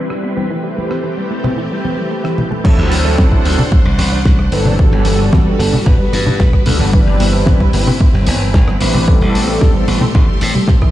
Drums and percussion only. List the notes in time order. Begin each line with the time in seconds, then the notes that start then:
0.10 cross-stick
0.37 high conga
0.78 high conga
0.91 cross-stick
1.44 low conga
1.85 high conga
2.25 cross-stick
2.38 low conga
2.52 high conga
2.65 kick, crash
2.92 open hi-hat, high conga
3.05 cross-stick
3.18 kick, snare
3.32 kick
3.45 open hi-hat
3.59 low conga
3.72 kick
3.99 open hi-hat, high conga
4.26 kick, snare
4.39 cross-stick
4.52 open hi-hat
4.65 high conga, low conga
4.79 kick
5.05 open hi-hat, high conga
5.19 cross-stick
5.33 kick, snare, high conga
5.60 open hi-hat
5.73 low conga
5.86 kick
6.13 open hi-hat, high conga
6.27 low conga
6.40 kick, snare
6.53 kick, cross-stick
6.66 open hi-hat, low conga
6.79 high conga
6.93 kick
7.20 open hi-hat, high conga
7.33 cross-stick
7.46 kick, snare
7.60 kick
7.73 open hi-hat
7.87 low conga
8.01 kick
8.27 open hi-hat, high conga
8.54 kick, snare
8.68 cross-stick
8.81 open hi-hat
8.94 high conga, low conga
9.08 kick
9.35 open hi-hat, high conga
9.47 cross-stick
9.61 kick, snare, high conga
9.88 open hi-hat
10.01 low conga
10.15 kick
10.41 open hi-hat, high conga
10.56 low conga
10.68 kick, snare
10.82 kick, cross-stick